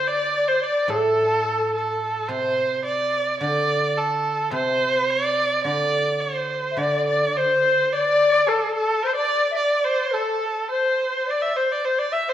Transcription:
<<
  \new Staff \with { instrumentName = "Dizi" } { \time 2/4 \tempo 4 = 107 d''8. c''16 d''8 a'8~ | a'4. r8 | r2 | r2 |
r2 | r4. r16. e''32 | d''8 d''16. d''32 c''4 | d''4 a'8 a'8 |
c''16 d''8~ d''32 e''32 d''4 | a'4 c''8. c''16 | d''8 c''8 c''16 d''16 e''16 c''16 | }
  \new Staff \with { instrumentName = "Erhu" } { \time 2/4 d''8. c''16 d''8 a'8~ | a'4 a'4 | c''4 d''4 | d''4 a'4 |
c''4 d''4 | d''4 c''4 | d''8 d''8 c''4 | d''4 a'8 a'8 |
c''16 d''8. d''8 c''8 | a'4 c''4 | d''16 e''16 c''16 d''16 c''16 d''16 e''16 c''16 | }
  \new Staff \with { instrumentName = "Guzheng" } { \clef bass \time 2/4 d4 r8 a,8~ | a,2 | c2 | d2 |
c2 | d2 | d2~ | d4 r4 |
r2 | r2 | r2 | }
>>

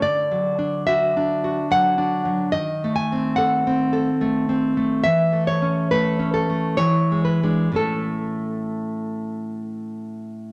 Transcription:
\new Staff \with { instrumentName = "Nylon-string guitar" } { \time 3/4 \key a \major \tempo 4 = 71 << { d''4 e''4 fis''4 | dis''8 gis''8 fis''4. r8 | e''8 cis''8 b'8 a'8 cis''8 b'8 | a'2 r4 | } \\ { \tuplet 3/2 { d8 fis8 d'8 fis'8 d'8 fis'8 fis8 d'8 fis8 } | \tuplet 3/2 { dis8 a8 bis8 a'8 bis8 a'8 a8 bis8 a8 } | \tuplet 3/2 { e8 a8 cis'8 a8 cis'8 a8 e8 gis8 <gis d'>8 } | <a, a cis'>2. | } >> }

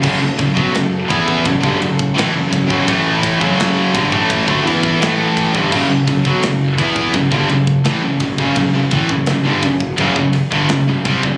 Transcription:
<<
  \new Staff \with { instrumentName = "String section" } { \time 4/4 \key fis \phrygian \tempo 4 = 84 <fis cis' fis' a'>1~ | <fis cis' fis' a'>1~ | <fis cis' fis' a'>1~ | <fis cis' fis' a'>1 | }
  \new Staff \with { instrumentName = "Distorted electric guitar" } { \clef bass \time 4/4 \key fis \phrygian <fis, cis>16 <fis, cis>16 <fis, cis>16 <b, fis>16 <fis, cis>8 <e b e'>8 <fis, cis>16 <g, d>16 <fis, cis>8 <a, e>16 <fis, cis>16 <fis, cis>16 <fis, cis>16 | <a, e a>8. <fis, cis fis>8. <g, d>16 <a, e a>8 <d a>16 <e b e'>8 <a, e a>8. <g, d>16 | <fis, cis>16 <fis, cis>16 <fis, cis>16 <b, fis>16 <fis, cis>8 <e b e'>8 <fis, cis>16 <g, d>16 <fis, cis>8 <a, e>16 <fis, cis>16 <fis, cis>16 <fis, cis>16 | <fis, cis>16 <fis, cis>16 <a, e>16 <fis, cis>16 <fis, cis>16 <g, d>16 <fis, cis>8 <fis, cis>16 <fis, cis>16 r16 <g, d>16 <fis, cis>16 <fis, cis>16 <bis, g>16 <fis, cis>16 | }
  \new Staff \with { instrumentName = "Distorted electric guitar" } { \clef bass \time 4/4 \key fis \phrygian <fis, cis>16 <fis, cis>16 <fis, cis>16 <b, fis>16 <fis, cis>8 <e b e'>8 <fis, cis>16 <g, d>16 <fis, cis>8 <a, e>16 <fis, cis>16 <fis, cis>16 <fis, cis>16 | <a, e a>8. <fis, cis fis>8. <g, d>16 <a, e a>8 <d a>16 <e b e'>8 <a, e a>8. <g, d>16 | <fis, cis>16 <fis, cis>16 <fis, cis>16 <b, fis>16 <fis, cis>8 <e b e'>8 <fis, cis>16 <g, d>16 <fis, cis>8 <a, e>16 <fis, cis>16 <fis, cis>16 <fis, cis>16 | <fis, cis>16 <fis, cis>16 <a, e>16 <fis, cis>16 <fis, cis>16 <g, d>16 <fis, cis>8 <fis, cis>16 <fis, cis>16 r16 <g, d>16 <fis, cis>16 <fis, cis>16 <bis, g>16 <fis, cis>16 | }
  \new Staff \with { instrumentName = "Distorted electric guitar" } { \clef bass \time 4/4 \key fis \phrygian <fis, cis>16 <fis, cis>16 <fis, cis>16 <b, fis>16 <fis, cis>8 <e b e'>8 <fis, cis>16 <g, d>16 <fis, cis>8 <a, e>16 <fis, cis>16 <fis, cis>16 <fis, cis>16 | <a, e a>8. <fis, cis fis>8. <g, d>16 <a, e a>8 <d a>16 <e b e'>8 <a, e a>8. <g, d>16 | <fis, cis>16 <fis, cis>16 <fis, cis>16 <b, fis>16 <fis, cis>8 <e b e'>8 <fis, cis>16 <g, d>16 <fis, cis>8 <a, e>16 <fis, cis>16 <fis, cis>16 <fis, cis>16 | <fis, cis>16 <fis, cis>16 <a, e>16 <fis, cis>16 <fis, cis>16 <g, d>16 <fis, cis>8 <fis, cis>16 <fis, cis>16 r16 <g, d>16 <fis, cis>16 <fis, cis>16 <bis, g>16 <fis, cis>16 | }
  \new Staff \with { instrumentName = "Fingered electric bass" } { \clef bass \time 4/4 \key fis \phrygian fis,,16 fis,,16 fis,,16 b,,16 fis,,8 e,8 fis,,16 g,,16 fis,,8 a,,16 fis,,16 fis,,16 fis,,16 | a,,8. fis,,8. g,,16 a,,8 d,16 e,8 a,,8. g,,16 | fis,,16 fis,,16 fis,,16 b,,16 fis,,8 e,8 fis,,16 g,,16 fis,,8 a,,16 fis,,16 fis,,16 fis,,16 | fis,,16 fis,,16 a,,16 fis,,16 fis,,16 g,,16 fis,,8 fis,,16 fis,,16 r16 g,,16 fis,,16 fis,,16 bis,,16 fis,,16 | }
  \new DrumStaff \with { instrumentName = "Drums" } \drummode { \time 4/4 <cymc bd>8 <bd cymr>16 bd16 <cymr sn>8 <bd cymr>16 bd16 <bd cymr>16 bd16 cymr16 bd16 <cymr sn>8 <bd cymr>16 bd16 | <bd cymr>8 <bd cymr>16 bd16 <cymr sn>8 <bd cymr>16 bd16 <bd cymr>16 bd16 cymr16 bd16 <cymr sn>8 <bd cymr>16 bd16 | <cymc bd>8 <bd cymr>16 bd16 <cymr sn>8 <bd cymr>16 bd16 <bd cymr>16 bd16 cymr16 bd16 <cymr sn>8 <bd cymr>16 bd16 | <bd cymr>8 <bd cymr>16 bd16 <cymr sn>8 <bd cymr>16 bd16 <bd cymr>16 bd16 cymr16 bd16 <cymr sn>8 <bd cymr>16 bd16 | }
>>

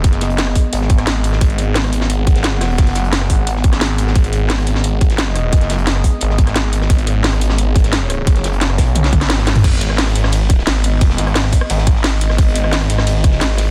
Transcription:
<<
  \new Staff \with { instrumentName = "Ambient pad" } { \time 4/4 \key gis \minor \tempo 4 = 175 << { dis''1 | fis''1~ | fis''1 | dis''1~ |
dis''1 | cis''1~ | cis''1 | dis''1~ |
dis''1~ | dis''1 | } \\ { <b gis'>1~ | <b gis'>1~ | <b gis'>1~ | <b gis'>1~ |
<b gis'>1~ | <b gis'>1~ | <b gis'>1 | <b gis'>1~ |
<b gis'>1~ | <b gis'>1 | } >> }
  \new Staff \with { instrumentName = "Detuned saw bass" } { \clef bass \time 4/4 \key gis \minor fis,,4. r8 gis,,8 gis,,8 gis,,4 | gis,,4. gis,,2~ gis,,8 | fis,,4. gis,,2~ gis,,8 | gis,,4. gis,,2~ gis,,8 |
fis,,4. r8 gis,,8 gis,,8 gis,,4 | gis,,4. gis,,2~ gis,,8 | fis,,4. b,,4 gis,,4. | gis,,4. gis,,4. gis,,4~ |
gis,,8 gis,,4 r8 gis,,4. gis,,8 | gis,,4. gis,,4. gis,,4 | }
  \new DrumStaff \with { instrumentName = "Drums" } \drummode { \time 4/4 <hh bd>16 <hh sn>16 <hh sn>16 hh16 <hh sn>16 <ss sn>16 <hh hho bd>8 hh16 sn16 <hh bd>16 <hh ss sn>16 <hh sn>8 hh16 sn16 | <hh bd>16 hh16 hh8 <hh hho sn>16 <hh ss>16 hh16 sn16 hh8 <hh bd>16 <hh sn>16 <hh sn>8 <hh hho ss sn>8 | <hh hho bd sn>16 <hh sn>16 <hh sn>16 hh16 <hh sn>16 <ss sn>16 <hh hho bd>8 hh16 sn16 <hh bd>16 <hh ss sn>16 <hh sn>8 hh16 sn16 | <hh bd>16 hh16 hh8 <hh hho sn>16 <hh ss>16 hh16 sn16 hh8 <hh bd>16 <hh sn>16 <hh sn>8 <hh ss>8 |
<hh bd>16 <hh sn>16 <hh sn>16 hh16 <hh sn>16 <ss sn>16 <hh hho bd>8 hh16 sn16 <hh bd>16 <hh ss sn>16 <hh sn>8 hh16 sn16 | <hh bd>16 hh16 hh8 <hh hho sn>16 <hh ss>16 hh16 sn16 hh8 <hh bd>16 <hh sn>16 <hh sn>8 <hh ss>8 | <hh bd>16 <hh sn>16 <hh sn>16 hh16 <hh sn>16 <ss sn>16 <hho bd sn>16 hh16 <hh tommh>16 <hh hho sn>16 <hh bd tommh>16 <hh ss sn>16 <hh hho sn>16 <hho sn>16 <hh hho sn>16 <hh hho sn toml>16 | <cymc hh bd cymr>16 hh16 hh16 ss16 <hh hho cymr sn>16 <hh ss>16 hh16 <ss sn>16 <hh cymr>8 <hh bd>16 sn16 <hh cymr sn>8 hh8 |
<hh bd cymr>16 sn16 <hh sn>16 <hh ss>16 <hh cymr sn>16 <ss sn>16 <hh hho bd>16 ss16 <hh cymr>16 sn16 <hh bd>16 sn16 <hh cymr sn>8 hh16 <ss sn>16 | <hh bd cymr>16 hh16 hh16 ss16 <hh hho cymr sn>16 <hh ss>16 hh16 <ss sn>16 <hh cymr>8 <hh bd>16 sn16 <hh cymr sn>8 <hh hho sn>8 | }
>>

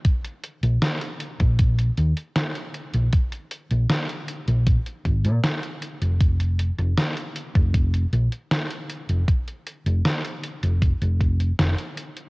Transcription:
<<
  \new Staff \with { instrumentName = "Fingered electric bass" } { \clef bass \time 4/4 \key bes \dorian \tempo 4 = 78 r8. bes,,16 r8. bes,,8. ees,16 r4 bes,,16 | r8. bes,,16 r8. bes,,16 r8 aes,,16 bes,16 r8. f,,16~ | f,,8. f,,16 r8. f,,8. bes,,16 r4 f,,16 | r8. f,,16 r8. f,,16 r16 f,,8. f,,16 r8. | }
  \new DrumStaff \with { instrumentName = "Drums" } \drummode { \time 4/4 <hh bd>16 hh16 hh16 hh16 <hh sn>16 hh16 hh16 <hh bd>16 <hh bd>16 hh16 hh16 hh16 <hh sn>16 hh16 hh16 hh16 | <hh bd>16 hh16 hh16 hh16 <hh sn>16 hh16 hh16 hh16 <hh bd>16 hh16 <hh bd>16 hh16 <hh sn>16 hh16 hh16 hh16 | <hh bd>16 hh16 hh16 hh16 <hh sn>16 hh16 hh16 <hh bd>16 <hh bd>16 hh16 hh16 hh16 <hh sn>16 hh16 hh16 hh16 | <hh bd>16 hh16 hh16 hh16 <hh sn>16 hh16 hh16 hh16 <hh bd>16 hh16 <hh bd>16 hh16 <hh sn>16 hh16 hh16 hh16 | }
>>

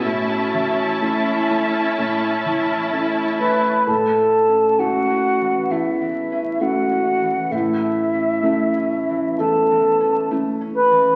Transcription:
<<
  \new Staff \with { instrumentName = "Flute" } { \time 4/4 \key a \mixolydian \tempo 4 = 65 r2. r8 b''8 | a''4 fis''4 e''4 fis''4 | e''2 a''4 r8 b''8 | }
  \new Staff \with { instrumentName = "Violin section" } { \time 4/4 \key a \mixolydian <e'' a''>1 | r1 | r1 | }
  \new Staff \with { instrumentName = "Clarinet" } { \time 4/4 \key a \mixolydian fis'4 e'2~ e'8 b'8 | a'4 fis'4 e'4 fis'4 | e'2 a'4 r8 b'8 | }
  \new Staff \with { instrumentName = "Viola section" } { \time 4/4 \key a \mixolydian <cis' e'>1 | r1 | r1 | }
  \new Staff \with { instrumentName = "Felt piano" } { \time 4/4 \key a \mixolydian a,8 e8 <a cis' e'>8 a8 a,8 e8 <a cis' e'>8 a8 | a,4 <a cis' e'>4 e,4 <a cis' e'>4 | a,4 <a cis' e'>4 e,4 <a cis' e'>4 | }
  \new Staff \with { instrumentName = "Harp" } { \time 4/4 \key a \mixolydian << { <a, a cis' e'>1~ | <a, a cis' e'>1~ | <a, a cis' e'>1 | } \\ { r1 | \tuplet 3/2 { a,8 a8 cis'8 a8 cis'8 e8 a8 e8 cis'8 a8 cis'8 e8 } | \tuplet 3/2 { a,8 a8 cis'8 a8 cis'8 e8 a8 e8 cis'8 a8 cis'8 e8 } | } >> }
>>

